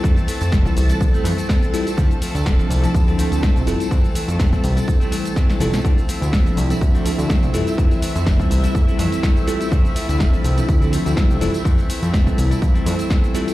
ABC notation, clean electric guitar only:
X:1
M:4/4
L:1/16
Q:"Swing 16ths" 1/4=124
K:F
V:1 name="Clean electric guitar"
[E,A,C]2 [E,A,C] [A,C] [E,A,C]4- [E,A,C] [A,C] [E,A,C] [A,C] [E,A,C]2 [E,A,C] [A,C] | [F,A,C]2 [F,A,C] [A,C] [F,A,C]4- [F,A,C] [A,C] [F,A,C] [A,C] [F,A,C]2 [E,A,C] [A,C] | [E,A,C]2 [E,A,C] [A,C] [E,A,C]3 [A,C]2 [A,C] [E,A,C]2 [E,A,C]2 [E,A,C] [A,C] | [F,A,C]2 [F,A,C] [A,C] [F,A,C]3 [A,C]2 [A,C] [F,A,C] [A,C] [F,A,C]2 [E,A,C] [A,C] |
[E,A,C]2 [E,A,C] [A,C] [E,A,C]4- [E,A,C] [A,C] [E,A,C] [A,C] [E,A,C]2 [E,A,C] [A,C] | [F,A,C]2 [F,A,C] [A,C] [F,A,C]4- [F,A,C] [A,C] [F,A,C] [A,C] [F,A,C]2 [E,A,C] [A,C] | [E,A,C]2 [E,A,C] [A,C] [E,A,C]3 [A,C]2 [A,C] [E,A,C] [A,C] [E,A,C]2 [E,A,C] [A,C] |]